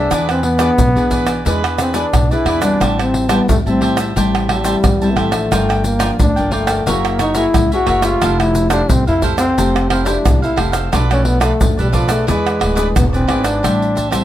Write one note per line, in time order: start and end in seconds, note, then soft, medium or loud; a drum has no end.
0.00 0.55 B3 medium
0.00 0.27 D4 loud
0.00 0.55 D4 medium
0.00 0.55 G#4 medium
0.11 0.68 E2 loud
0.11 0.75 E3 medium
0.11 0.26 E4 medium
0.11 0.27 G#4 medium
0.11 0.27 B4 medium
0.11 0.27 D5 medium
0.11 pandeiro medium
0.11 tamborim medium
0.11 shaker medium
0.11 surdo medium
0.29 0.44 C4 medium
0.29 0.58 G#4 soft
0.29 0.59 B4 soft
0.29 0.59 D5 medium
0.29 pandeiro soft
0.29 tamborim medium
0.29 shaker soft
0.43 1.42 B3 loud
0.43 pandeiro medium
0.58 0.88 B3 medium
0.58 0.89 D4 medium
0.58 0.69 E4 medium
0.58 0.69 G#4 medium
0.58 0.89 G#4 medium
0.58 0.70 B4 medium
0.58 0.70 D5 medium
0.58 pandeiro medium
0.58 tamborim medium
0.58 shaker medium
0.78 0.93 B1 medium
0.78 pandeiro medium
0.78 shaker medium
0.78 surdo loud
0.96 1.39 E3 medium
0.96 1.41 B3 medium
0.96 1.41 D4 medium
0.96 1.41 G#4 medium
0.96 1.10 G#4 soft
0.96 1.11 B4 soft
0.96 1.11 D5 medium
0.96 pandeiro soft
0.96 shaker soft
1.10 1.27 E4 medium
1.10 1.27 G#4 medium
1.10 1.26 B4 medium
1.10 1.25 D5 medium
1.10 pandeiro medium
1.10 shaker medium
1.10 surdo medium
1.26 1.44 G#4 soft
1.26 1.44 B4 soft
1.26 1.43 D5 soft
1.26 pandeiro medium
1.26 tamborim medium
1.26 shaker medium
1.45 2.03 E2 medium
1.45 2.10 E3 medium
1.45 1.62 G#3 medium
1.45 1.91 B3 medium
1.45 1.91 D4 medium
1.45 1.77 E4 medium
1.45 1.78 G#4 medium
1.45 1.92 G#4 medium
1.45 1.78 B4 medium
1.45 1.79 D5 medium
1.45 pandeiro medium
1.45 shaker medium
1.45 surdo medium
1.64 pandeiro soft
1.64 tamborim medium
1.64 shaker soft
1.78 1.97 C4 medium
1.78 1.93 E4 soft
1.78 1.93 G#4 medium
1.78 1.94 B4 soft
1.78 1.94 D5 medium
1.78 pandeiro medium
1.78 tamborim medium
1.78 shaker medium
1.93 2.23 B3 medium
1.93 2.24 D4 medium
1.93 2.34 D4 medium
1.93 2.04 E4 medium
1.93 2.24 G#4 medium
1.93 2.05 G#4 medium
1.93 2.05 B4 medium
1.93 2.05 D5 medium
1.93 pandeiro medium
1.93 shaker medium
2.13 2.28 B1 medium
2.13 pandeiro medium
2.13 tamborim medium
2.13 shaker medium
2.13 surdo loud
2.31 2.59 B3 medium
2.31 2.60 D4 medium
2.31 2.62 E4 medium
2.31 2.60 G#4 medium
2.31 2.45 G#4 soft
2.31 2.46 B4 soft
2.31 2.46 D5 medium
2.31 pandeiro soft
2.31 shaker soft
2.45 2.75 E2 medium
2.45 2.62 E4 medium
2.45 2.62 G#4 medium
2.45 2.61 B4 medium
2.45 2.60 D5 medium
2.45 pandeiro medium
2.45 tamborim medium
2.61 3.25 G3 medium
2.61 3.25 C4 medium
2.61 3.02 D4 loud
2.61 3.25 E4 medium
2.61 2.79 G#4 soft
2.61 2.79 B4 soft
2.61 2.78 D5 soft
2.61 pandeiro medium
2.61 tamborim medium
2.61 shaker medium
2.80 3.38 A1 loud
2.80 3.45 A2 medium
2.80 2.96 G4 medium
2.80 2.97 C5 medium
2.80 2.97 E5 medium
2.80 2.97 A5 medium
2.80 pandeiro medium
2.80 tamborim medium
2.80 shaker medium
2.80 surdo medium
2.98 3.32 C4 medium
2.98 3.28 C5 soft
2.98 3.29 E5 soft
2.98 3.29 A5 soft
2.98 pandeiro soft
2.98 tamborim medium
2.98 shaker soft
3.14 pandeiro medium
3.29 3.59 G3 medium
3.29 3.48 B3 medium
3.29 3.59 C4 medium
3.29 3.59 E4 medium
3.29 3.39 G4 medium
3.29 3.40 C5 medium
3.29 3.40 E5 medium
3.29 3.40 A5 medium
3.29 pandeiro medium
3.29 tamborim medium
3.29 shaker medium
3.48 3.63 E2 medium
3.48 4.13 E3 medium
3.48 3.57 A3 medium
3.48 pandeiro medium
3.48 shaker medium
3.48 surdo loud
3.66 4.09 A2 medium
3.66 4.11 G3 medium
3.66 4.12 C4 medium
3.66 3.98 C4 medium
3.66 4.12 E4 medium
3.66 3.81 C5 soft
3.66 3.81 E5 soft
3.66 3.82 A5 soft
3.66 pandeiro soft
3.66 shaker soft
3.81 3.97 G4 medium
3.81 3.98 C5 medium
3.81 3.97 E5 medium
3.81 3.96 A5 medium
3.81 pandeiro medium
3.97 4.15 C5 soft
3.97 4.14 E5 soft
3.97 4.14 A5 soft
3.97 pandeiro medium
3.97 tamborim medium
3.97 shaker medium
4.16 4.74 A1 medium
4.16 4.80 A2 medium
4.16 4.62 G3 medium
4.16 4.62 C4 medium
4.16 4.62 E4 medium
4.16 4.47 G4 medium
4.16 4.48 C5 medium
4.16 4.49 E5 medium
4.16 4.49 A5 medium
4.16 pandeiro medium
4.16 shaker medium
4.16 surdo medium
4.35 pandeiro soft
4.35 tamborim medium
4.35 shaker soft
4.48 5.12 G3 medium
4.48 4.63 G4 soft
4.48 4.64 C5 medium
4.48 4.64 E5 medium
4.48 4.65 A5 medium
4.48 pandeiro medium
4.48 tamborim medium
4.64 4.94 G3 medium
4.64 4.94 C4 medium
4.64 4.95 E4 medium
4.64 4.75 G4 medium
4.64 4.75 C5 medium
4.64 4.75 E5 medium
4.64 4.76 A5 medium
4.64 pandeiro medium
4.64 shaker medium
4.84 4.98 E2 medium
4.84 pandeiro medium
4.84 tamborim medium
4.84 shaker medium
4.84 surdo loud
5.02 5.30 G3 medium
5.02 5.30 C4 medium
5.02 5.30 E4 medium
5.02 5.16 C5 soft
5.02 5.16 E5 soft
5.02 5.17 A5 medium
5.02 pandeiro soft
5.02 shaker soft
5.11 5.19 B3 medium
5.16 5.46 A1 medium
5.16 5.85 A3 medium
5.16 5.32 G4 medium
5.16 5.32 C5 medium
5.16 5.31 E5 medium
5.16 5.30 A5 medium
5.16 pandeiro medium
5.16 tamborim medium
5.31 5.96 F3 medium
5.31 5.96 D4 medium
5.31 5.50 C5 soft
5.31 5.49 E5 soft
5.31 5.49 A5 soft
5.31 pandeiro medium
5.31 tamborim medium
5.31 shaker medium
5.51 6.09 G1 medium
5.51 6.16 G2 medium
5.51 5.67 F4 medium
5.51 5.67 A#4 medium
5.51 5.68 D5 medium
5.51 5.68 G5 medium
5.51 pandeiro medium
5.51 tamborim medium
5.51 shaker medium
5.51 surdo medium
5.69 5.99 A#4 soft
5.69 5.99 D5 soft
5.69 5.99 G5 medium
5.69 pandeiro soft
5.69 tamborim medium
5.69 shaker soft
5.84 6.17 A#3 medium
5.84 pandeiro medium
5.84 shaker medium
5.99 6.30 F3 medium
5.99 6.30 A#3 medium
5.99 6.30 D4 medium
5.99 6.10 F4 medium
5.99 6.10 A#4 medium
5.99 6.10 D5 medium
5.99 6.10 G5 medium
5.99 pandeiro medium
5.99 tamborim medium
5.99 shaker medium
6.20 6.34 D2 medium
6.20 6.84 D3 medium
6.20 6.54 D4 loud
6.20 pandeiro medium
6.20 shaker medium
6.20 surdo loud
6.36 6.80 G1 medium
6.36 6.82 F3 medium
6.36 6.83 A#3 medium
6.36 6.83 D4 medium
6.36 6.51 A#4 soft
6.36 6.51 D5 soft
6.36 6.52 G5 medium
6.36 pandeiro soft
6.36 shaker soft
6.51 6.90 A3 medium
6.51 6.68 F4 medium
6.51 6.68 A#4 medium
6.51 6.67 D5 medium
6.51 6.66 G5 medium
6.51 pandeiro medium
6.67 6.85 A#4 soft
6.67 6.85 D5 soft
6.67 6.84 G5 medium
6.67 pandeiro medium
6.67 tamborim medium
6.67 shaker medium
6.86 7.45 F#1 medium
6.86 7.52 F#3 medium
6.86 7.33 A#3 medium
6.86 7.20 A#3 medium
6.86 7.33 E4 medium
6.86 7.18 F#4 medium
6.86 7.33 G#4 medium
6.86 7.18 A#4 medium
6.86 7.19 C#5 medium
6.86 7.20 E5 medium
6.86 pandeiro medium
6.86 shaker medium
6.86 surdo medium
7.05 pandeiro soft
7.05 tamborim medium
7.05 shaker soft
7.19 7.38 D#4 loud
7.19 7.33 F#4 medium
7.19 7.34 A#4 medium
7.19 7.34 C#5 medium
7.19 7.35 E5 medium
7.19 pandeiro medium
7.19 tamborim medium
7.19 shaker medium
7.35 7.65 A#3 medium
7.35 7.65 E4 medium
7.35 7.71 E4 loud
7.35 7.45 F#4 medium
7.35 7.65 G#4 medium
7.35 7.46 A#4 medium
7.35 7.46 C#5 medium
7.35 7.46 E5 medium
7.35 pandeiro medium
7.35 shaker medium
7.54 7.69 C#2 loud
7.54 8.19 C#3 medium
7.54 pandeiro medium
7.54 tamborim medium
7.54 shaker medium
7.54 surdo loud
7.72 8.01 A#3 medium
7.72 8.01 E4 medium
7.72 8.05 F#4 loud
7.72 8.01 G#4 medium
7.72 7.86 A#4 soft
7.72 7.86 C#5 medium
7.72 7.87 E5 medium
7.72 pandeiro soft
7.72 shaker soft
7.86 8.17 F#1 medium
7.86 8.03 F#4 medium
7.86 8.03 A#4 medium
7.86 8.03 C#5 medium
7.86 8.01 E5 medium
7.86 pandeiro medium
7.86 tamborim medium
8.02 8.67 A3 medium
8.02 8.42 F4 loud
8.02 8.67 G4 medium
8.02 8.21 A#4 soft
8.02 8.20 C#5 soft
8.02 8.19 E5 soft
8.02 pandeiro medium
8.02 tamborim medium
8.02 shaker medium
8.22 8.80 F1 loud
8.22 8.87 F3 medium
8.22 8.38 E4 medium
8.22 8.38 A4 medium
8.22 8.39 C5 medium
8.22 8.39 F5 medium
8.22 pandeiro medium
8.22 tamborim medium
8.22 shaker medium
8.22 surdo medium
8.40 8.70 E4 medium
8.40 8.69 A4 soft
8.40 8.70 C5 soft
8.40 pandeiro soft
8.40 tamborim medium
8.40 shaker soft
8.55 pandeiro medium
8.55 shaker medium
8.70 9.17 A3 medium
8.70 8.92 D4 loud
8.70 8.81 E4 medium
8.70 9.17 E4 medium
8.70 9.18 G4 medium
8.70 8.81 A4 medium
8.70 8.81 C5 medium
8.70 8.81 F5 medium
8.70 pandeiro medium
8.70 tamborim medium
8.70 shaker medium
8.89 9.04 C2 medium
8.89 9.55 C3 medium
8.89 9.07 C4 medium
8.89 pandeiro medium
8.89 shaker medium
8.89 surdo loud
9.07 9.51 F2 medium
9.07 9.23 E4 loud
9.07 9.22 A4 soft
9.07 9.22 C5 soft
9.07 9.23 F5 soft
9.07 pandeiro soft
9.07 shaker soft
9.22 9.43 A3 medium
9.22 9.39 E4 medium
9.22 9.44 E4 medium
9.22 9.44 G4 medium
9.22 9.38 A4 medium
9.22 9.38 C5 medium
9.22 9.36 F5 medium
9.22 pandeiro medium
9.22 shaker medium
9.22 surdo medium
9.38 9.87 C4 loud
9.38 9.56 A4 soft
9.38 9.55 C5 soft
9.38 9.55 F5 medium
9.38 pandeiro medium
9.38 tamborim medium
9.38 shaker medium
9.58 10.15 F1 medium
9.58 10.22 F3 medium
9.58 10.03 A3 medium
9.58 10.04 G4 medium
9.58 9.90 A4 medium
9.58 9.91 C5 medium
9.58 9.91 F5 medium
9.58 pandeiro medium
9.58 shaker medium
9.58 surdo medium
9.76 pandeiro soft
9.76 tamborim medium
9.76 shaker soft
9.90 10.08 C4 medium
9.90 10.04 E4 medium
9.90 10.05 A4 medium
9.90 10.05 C5 medium
9.90 10.05 F5 medium
9.90 pandeiro medium
9.90 tamborim medium
10.05 10.53 A3 medium
10.05 10.41 D4 medium
10.05 10.16 E4 medium
10.05 10.53 E4 medium
10.05 10.53 G4 medium
10.05 10.16 A4 medium
10.05 10.16 C5 medium
10.05 10.17 F5 medium
10.05 pandeiro medium
10.05 shaker medium
10.25 10.40 C2 medium
10.25 10.90 C3 medium
10.25 pandeiro medium
10.25 tamborim medium
10.25 shaker medium
10.25 surdo loud
10.42 10.59 E4 medium
10.42 10.56 A4 soft
10.42 10.57 C5 soft
10.42 10.57 F5 medium
10.42 pandeiro soft
10.42 shaker soft
10.56 10.87 F1 medium
10.56 10.87 A3 medium
10.56 10.73 E4 medium
10.56 10.87 E4 medium
10.56 10.88 G4 medium
10.56 10.73 A4 medium
10.56 10.72 C5 medium
10.56 10.71 F5 medium
10.56 pandeiro medium
10.56 tamborim medium
10.72 10.91 A4 soft
10.72 10.90 C5 soft
10.72 10.90 F5 soft
10.72 pandeiro medium
10.72 tamborim medium
10.72 shaker medium
10.92 11.51 B1 loud
10.92 11.58 B2 medium
10.92 11.05 F3 medium
10.92 11.05 A3 medium
10.92 11.05 D4 medium
10.92 11.08 F4 medium
10.92 11.09 A4 medium
10.92 11.09 B4 medium
10.92 11.09 D5 medium
10.92 pandeiro medium
10.92 tamborim medium
10.92 shaker medium
10.92 surdo medium
11.10 11.56 F3 medium
11.10 11.56 A3 medium
11.10 11.28 C#4 medium
11.10 11.56 D4 medium
11.10 11.40 A4 soft
11.10 11.40 B4 soft
11.10 11.40 D5 soft
11.10 pandeiro soft
11.10 tamborim medium
11.10 shaker soft
11.25 11.41 B3 loud
11.25 pandeiro medium
11.40 11.81 A3 medium
11.40 11.51 F4 medium
11.40 11.51 A4 medium
11.40 11.52 B4 medium
11.40 11.52 D5 medium
11.40 pandeiro medium
11.40 tamborim medium
11.40 shaker medium
11.61 11.75 F2 medium
11.61 12.25 B2 medium
11.61 12.06 F3 medium
11.61 12.06 A3 medium
11.61 12.06 D4 medium
11.61 pandeiro medium
11.61 shaker medium
11.61 surdo loud
11.78 12.22 B2 medium
11.78 11.90 G3 medium
11.78 11.92 A4 soft
11.78 11.93 B4 soft
11.78 11.93 D5 soft
11.78 pandeiro soft
11.78 shaker soft
11.91 12.09 F3 medium
11.91 11.95 G3 medium
11.91 12.09 F4 medium
11.91 12.09 A4 medium
11.91 12.08 B4 medium
11.91 12.07 D5 medium
11.91 pandeiro medium
11.91 shaker medium
11.91 surdo medium
12.08 12.26 A3 medium
12.08 12.73 B3 medium
12.08 12.73 D4 medium
12.08 12.73 G#4 medium
12.08 12.26 A4 soft
12.08 12.26 B4 soft
12.08 12.25 D5 soft
12.08 pandeiro medium
12.08 tamborim medium
12.08 shaker medium
12.27 12.58 E2 medium
12.27 12.93 E3 medium
12.27 12.93 G#3 medium
12.27 12.58 E4 medium
12.27 12.59 G#4 medium
12.27 12.60 B4 medium
12.27 12.60 D5 medium
12.27 pandeiro medium
12.27 shaker medium
12.27 surdo medium
12.47 pandeiro soft
12.47 tamborim medium
12.47 shaker soft
12.59 12.92 D1 medium
12.59 12.74 E4 medium
12.59 12.75 G#4 medium
12.59 12.75 B4 medium
12.59 12.75 D5 medium
12.59 pandeiro medium
12.59 tamborim medium
12.75 13.24 B3 medium
12.75 13.24 D4 medium
12.75 12.86 E4 medium
12.75 12.87 G#4 medium
12.75 13.24 G#4 medium
12.75 12.87 B4 medium
12.75 12.87 D5 medium
12.75 pandeiro medium
12.75 shaker medium
12.96 13.27 E1 medium
12.96 13.05 B3 medium
12.96 pandeiro medium
12.96 tamborim medium
12.96 shaker medium
12.96 surdo loud
13.13 13.46 C4 medium
13.13 13.27 G#4 soft
13.13 13.28 B4 soft
13.13 13.29 D5 medium
13.13 pandeiro soft
13.13 shaker soft
13.27 13.60 G#1 medium
13.27 13.61 B3 medium
13.27 13.61 D4 medium
13.27 13.44 E4 medium
13.27 13.45 G#4 medium
13.27 13.61 G#4 medium
13.27 13.43 B4 medium
13.27 13.42 D5 medium
13.27 pandeiro medium
13.27 tamborim medium
13.43 14.14 D4 loud
13.43 13.62 G#4 soft
13.43 13.61 B4 soft
13.43 13.61 D5 soft
13.43 pandeiro medium
13.43 tamborim medium
13.43 shaker medium
13.63 14.21 A1 loud
13.63 14.24 A2 soft
13.63 13.96 G3 medium
13.63 13.96 C4 soft
13.63 13.96 E4 medium
13.63 13.94 G4 medium
13.63 13.95 C5 medium
13.63 13.96 E5 medium
13.63 13.97 A5 medium
13.63 pandeiro medium
13.63 tamborim medium
13.63 shaker medium
13.63 surdo medium
13.82 pandeiro soft
13.82 shaker soft
13.95 14.09 G4 soft
13.95 14.10 C5 medium
13.95 14.10 E5 medium
13.95 14.11 A5 medium
13.95 pandeiro medium
13.95 shaker medium
13.95 surdo soft
14.11 14.24 G3 medium
14.11 14.24 C4 medium
14.11 14.24 E4 medium
14.11 14.22 G4 medium
14.11 14.22 C5 medium
14.11 14.22 E5 medium
14.11 14.23 A5 medium
14.11 pandeiro medium
14.11 tamborim medium
14.11 shaker medium
14.11 surdo soft